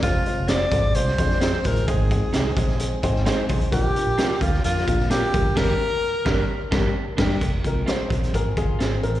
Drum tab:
CC |----------------|----------------|----------------|x-------------x-|
HH |x-x-x-x-x-x-x-xx|x-x-x-x-x-x-x-ox|x-x-x-x-x-x-x-x-|----------------|
SD |----o----o-oo---|----o--o---oo---|----o--o-o-oo---|o-----o---o---o-|
BD |o-----o---o---o-|o-o---o---o---o-|o-----o---o---o-|o-----o---o---o-|

CC |----------------|
HH |x-x-x-xxx-x-x-xx|
SD |----o--o----o---|
BD |o-o---o-o-o-----|